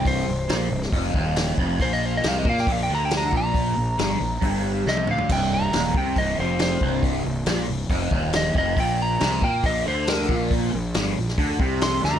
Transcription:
<<
  \new Staff \with { instrumentName = "Lead electric guitar" } { \time 4/4 \key g \dorian \tempo 4 = 138 c''2 r2 | c''16 ees''16 c''16 ees''16 f''16 ees''16 f''16 g''16 f''16 g''16 bes''16 g''16 bes''8 bes''8~ | bes''2~ bes''8 r8 ees''8 f''8 | g''8 bes''4 g''8 ees''8 c''8 c''4 |
r2. ees''8 ees''8 | g''8 bes''4 g''8 ees''8 c''8 bes'4 | r2. c'''8 bes''8 | }
  \new Staff \with { instrumentName = "Overdriven electric guitar" } { \clef bass \time 4/4 \key g \dorian c,8 c,8 bes,8 c,8 f,8 ees,4 f,8 | bes,4 c8 bes8 bes,8 d4 bes,8~ | bes,8 bes,8 g,8 bes,8 g,4 c8 d8 | c,4 ees,8 c8 c,8 f,4 c,8~ |
c,8 c,8 bes,8 c,8 f,8 ees,4 f,8 | bes,4 c8 bes8 bes,8 d4 bes,8~ | bes,8 bes,8 g,8 bes,8 d8 c4 d8 | }
  \new Staff \with { instrumentName = "Fingered electric bass" } { \clef bass \time 4/4 \key g \dorian c,,8 c,,8 bes,,8 c,,8 f,,8 ees,,4 f,,8 | bes,,4 c,8 bes,8 bes,,8 d,4 bes,,8~ | bes,,8 bes,,8 g,,8 bes,,8 g,,4 c,8 d,8 | c,,4 ees,,8 c,8 c,,8 f,,4 c,,8~ |
c,,8 c,,8 bes,,8 c,,8 f,,8 ees,,4 f,,8 | bes,,4 c,8 bes,8 bes,,8 d,4 bes,,8~ | bes,,8 bes,,8 g,,8 bes,,8 d,8 c,4 d,8 | }
  \new DrumStaff \with { instrumentName = "Drums" } \drummode { \time 4/4 <hho bd>4 <hho sn>8. sn16 <hho bd>8 bd8 <hho sn>8 bd8 | <hho bd>4 <hho sn>8 bd16 sn16 <hho bd>4 <hho sn>8 bd8 | <hho bd>4 <hho sn>4 <hho bd>4 sn16 tommh16 toml16 tomfh16 | <cymc hho bd>4 <hho sn>8 bd8 <hho bd>4 <hho sn>8 bd8 |
<hho bd>4 <hho sn>4 <hho bd>8 bd8 <hho sn>8 bd8 | <hho bd>4 <hho sn>8 bd8 <hho bd>4 <hho sn>8 bd8 | <hho bd>4 <hho sn>8. sn16 <hho bd>8 bd8 <hho sn>8 sn16 tomfh16 | }
>>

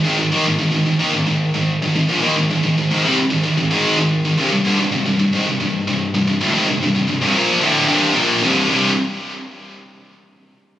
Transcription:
\new Staff \with { instrumentName = "Distorted electric guitar" } { \clef bass \time 4/4 \key c \minor \tempo 4 = 111 <aes, ees>16 <aes, ees>16 <ees bes>16 <aes, ees>16 <aes, ees>16 <aes, ees>16 <aes, ees>16 <ees bes>16 <aes, ees>16 <aes, ees>8 <aes, ees>8 <aes, ees>16 <aes, ees>16 <bes, f>16 | <ees bes>16 <aes, ees>16 <aes, ees>16 <aes, ees>16 <aes, ees>16 <aes, ees>16 <c g>16 r16 <aes, ees>16 <aes, ees>16 <aes, ees>16 <aes, ees aes>8 <aes, ees>8 <aes, ees>16 | <c, g,>16 <c, g,>16 <g, d>16 <c, g,>16 <c, g,>16 <c, g,>16 <c, g,>16 <aes, ees>16 <c, g,>16 <c, g,>8 <c, g,>8 <c, g,>16 <c, g,>16 <d, a,>16 | <aes, ees>16 <c, g,>16 <c, g,>16 <c, g,>16 <c, g,>16 <c, g,>16 <bes, f bes>8 <d, a, d>8 <c, g, c>8 <bes, f bes>8 <c, g, c>8 |
<c, g, c>8 r2. r8 | }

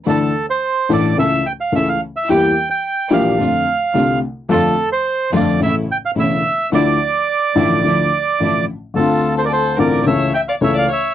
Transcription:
<<
  \new Staff \with { instrumentName = "Bandoneon" } { \time 4/4 \key d \minor \tempo 4 = 108 a'8. c''8. d''8 e''8 g''16 f''16 e''16 f''8 e''16 | g''8. g''8. f''2 r8 | a'8. c''8. d''8 e''8 g''16 f''16 e''4 | d''2.~ d''8 r8 |
a'8. c''32 d''32 c''8 d''8 e''8 g''16 f''16 e''16 f''16 e''8 | }
  \new Staff \with { instrumentName = "Violin" } { \time 4/4 \key d \minor r1 | r1 | r1 | r1 |
f'8. a'32 bes'32 a'8 bes'8 cis''8 e''16 d''16 cis''16 d''16 cis''8 | }
  \new Staff \with { instrumentName = "String section" } { \time 4/4 \key d \minor <d' e' a'>8 r4 <d' e' a'>8 <cis' e' a'>8 r8 <cis' e' a'>8 r8 | <bes e' g'>8 r4 <bes e' g'>8 <a d' f'>8 r8 <a d' f'>8 r8 | <f, a d' f'>8 r4 <f, a d' f'>8 <a cis' e'>8 r8 <a cis' e'>8 r8 | <f d' e'>8 r4 <f d' e'>8 <f d' e'>8 r8 <f d' e'>8 r8 |
r1 | }
  \new Staff \with { instrumentName = "Upright piano" } { \clef bass \time 4/4 \key d \minor <d, d e a d' a'>8 r4 <a,, a, e a d' a'>8 <cis, cis e a cis' a'>8 r8 <cis, cis e a cis' a'>8 r8 | <e, e g bes g'>8 r4 <bes,, bes, e g bes g'>8 <f, d f a c' f'>8 r8 <c, c d a c' f'>8 r8 | <f, d f a f'>8 r4 <f, d f a f'>8 <a,, a, cis e a e'>8 r8 <e,, e, cis e a e'>8 r8 | <d, d f a e'>8 r4 <a,, a, d f a e'>8 <d, d f a e'>8 r8 <a,, a, d f a e'>8 r8 |
<d, d a c' f'>4. <a,, a, d a c' f'>8 <cis, cis e a cis' a'>8 r8 <cis, cis e a cis' a'>8 r8 | }
>>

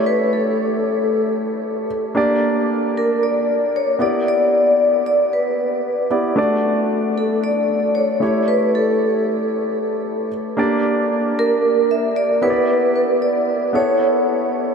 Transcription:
<<
  \new Staff \with { instrumentName = "Vibraphone" } { \time 4/4 \key a \mixolydian \tempo 4 = 114 b'8 a'2 r4. | r4. bes'8 d''4 cis''8 d''8 | d''4. d''8 b'4. r8 | r4. a'8 d''4 cis''4 |
b'8 a'2 r4. | r4. bes'4 e''8 d''8 b'8~ | b'8 b'8 d''4 cis''4. r8 | }
  \new Staff \with { instrumentName = "Grand piano" } { \time 4/4 \key a \mixolydian <a e' g' cis''>2.~ <a e' g' cis''>8 r8 | <bes d' g' d''>2.~ <bes d' g' d''>8 <b e' g' d''>8~ | <b e' g' d''>2.~ <b e' g' d''>8 <b e' g' d''>8 | <a d' fis' d''>2.~ <a d' fis' d''>8 <a e' g' cis''>8~ |
<a e' g' cis''>2.~ <a e' g' cis''>8 r8 | <bes d' g' d''>2.~ <bes d' g' d''>8 <b e' g' cis'' d''>8~ | <b e' g' cis'' d''>2 <b e' a' cis''>2 | }
>>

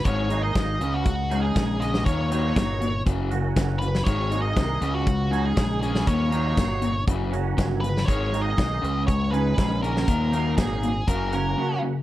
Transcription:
<<
  \new Staff \with { instrumentName = "Lead electric guitar" } { \time 4/4 \key des \mixolydian \tempo 4 = 120 des''8. ees''4 ges'4 aes'8. ees''8 | des''2 r4. ces''8 | des''8. ees''4 ges'4 aes'8. aes'8 | des''2 r4. ces''8 |
des''8. ees''4~ ees''16 des''8 ces''4 bes'8~ | bes'4 aes'4 bes'4. r8 | }
  \new Staff \with { instrumentName = "Overdriven electric guitar" } { \time 4/4 \key des \mixolydian r8 <ees aes bes ees'>8 <ees aes bes ees'>8 r4 <aes des' ees' aes'>8 <aes des' ees' aes'>8 r8 | r8 <ees ges bes ees'>8 <ees ges bes ees'>8 r4 <ges bes des' ges'>8 <ges bes des' ges'>8 r8 | r8 <ees aes bes ees'>8 <ees aes bes ees'>8 r4 <aes des' ees' aes'>8 <aes des' ees' aes'>8 r8 | r8 <ees ges bes ees'>8 <ees ges bes ees'>8 r4 <ges bes des' ges'>8 <ges bes des' ges'>8 r8 |
r8 <ees aes bes ees'>8 <ees aes bes ees'>8 r4 <aes des' ees' aes'>8 <aes des' ees' aes'>8 r8 | r8 <ees ges bes ees'>8 <ees ges bes ees'>8 r4 <ges bes des' ges'>8 <ges bes des' ges'>8 r8 | }
  \new Staff \with { instrumentName = "Overdriven electric guitar" } { \clef bass \time 4/4 \key des \mixolydian <aes, ees aes>8 <aes, ees>8 <aes, ees>8 <des aes des'>8 <des aes>8 <des aes>8 <des aes>8 <des aes des'>8 | <ees, bes, ees>8 <ees, bes, ees>8 <ees, bes,>8 <ees, bes,>8 <ges, des ges>8 <ges, des>8 <ges, des>8 <ges, des>8 | <aes, ees aes>8 <aes, ees>8 <aes, ees>8 <des aes des'>8 <des aes>8 <des aes>8 <des aes>8 <des aes des'>8 | <ees, bes, ees>8 <ees, bes, ees>8 <ees, bes,>8 <ees, bes,>8 <ges, des ges>8 <ges, des>8 <ges, des>8 <ges, des>8 |
<aes, ees aes>8 <aes, ees>8 <aes, ees>8 <des aes des'>8 <des aes>8 <des aes>8 <des aes>8 <des aes des'>8 | <ees, bes, ees>8 <ees, bes, ees>8 <ees, bes,>8 <ees, bes,>8 <ges, des ges>8 <ges, des>8 <ges, des>8 <ges, des>8 | }
  \new Staff \with { instrumentName = "Fingered electric bass" } { \clef bass \time 4/4 \key des \mixolydian aes,,4 aes,,8 des,4. bes,,4 | ees,4 g,,4 ges,,4 ges,,4 | aes,,4 c,8 des,4. bes,,4 | ees,4 g,,4 ges,,4 g,,4 |
aes,,4 ces,8 des,4. bes,,4 | ees,4 aes,,4 ges,,4 r4 | }
  \new DrumStaff \with { instrumentName = "Drums" } \drummode { \time 4/4 <hh bd>8 hh8 <hh bd sn>8 hh8 <hh bd>8 hh8 <hh bd sn>8 <hh sn>16 sn16 | <hh bd>8 hh8 <hh bd sn>8 hh8 <hh bd>8 hh8 <hh bd sn>8 hh16 sn16 | <hh bd>8 hh8 <hh bd sn>8 hh8 <hh bd>8 hh8 <hh bd sn>8 hh16 sn16 | <hh bd>8 hh8 <hh bd sn>8 hh8 <hh bd>8 hh8 <hh bd sn>8 hh16 sn16 |
<hh bd>8 hh8 <hh bd sn>8 hh8 <hh bd>8 hh8 <hh bd sn>8 hh16 sn16 | <hh bd>8 hh8 <hh bd sn>8 hh8 <hh bd>8 hh8 r4 | }
>>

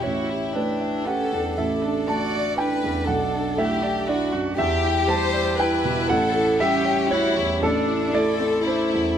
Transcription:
<<
  \new Staff \with { instrumentName = "Violin section" } { \time 3/4 \key d \mixolydian \tempo 4 = 118 e'4 d'4 a'4 | a'4 d''4 b'4 | a'4 g'4 fis'8 r8 | g'4 c''4 b'4 |
a'4 g'4 e'4 | d'4 a'4 e'4 | }
  \new Staff \with { instrumentName = "Harmonium" } { \time 3/4 \key d \mixolydian << { e''2. | d''2.~ | d''2.~ | d''2. |
cis''2. | d''2. | } \\ { g'2. | d'2.~ | d'2. | e'2.~ |
e'2.~ | e'2. | } >> }
  \new Staff \with { instrumentName = "Harmonium" } { \time 3/4 \key d \mixolydian a2.~ | a2.~ | a2. | g2.~ |
g2. | a2. | }
  \new Staff \with { instrumentName = "Cello" } { \time 3/4 \key d \mixolydian fis'8 e'4. cis'8 d'8 | e'8 d'8 fis'4 e'4 | d'4 e'8 d'8 e'8 fis'8 | g'2 e'4~ |
e'4 cis'4 fis'8 e'8 | d'4 e'8 c'8 d'8 e'8 | }
  \new Staff \with { instrumentName = "Grand piano" } { \time 3/4 \key d \mixolydian cis''4 b'4 fis''4 | e''4 a''4 g''4 | fis''4 e''4 d''8 r8 | e''4 a''4 g''4 |
fis''4 e''4 cis''4 | a'4 d''4 c''4 | }
  \new Staff \with { instrumentName = "Grand piano" } { \time 3/4 \key d \mixolydian a,,8 g'8 a8 e''8 g'8 e,8 | a,,8 d'8 a8 d''8 d'8 e,8 | b,,8 d'8 a8 d''8 d'8 fis,8 | e,8 e'8 g8 d''8 e'8 b,8 |
a,,8 e'8 g8 cis''8 e'8 e,8 | a,,8 e'8 a8 d''8 e'8 e,8 | }
>>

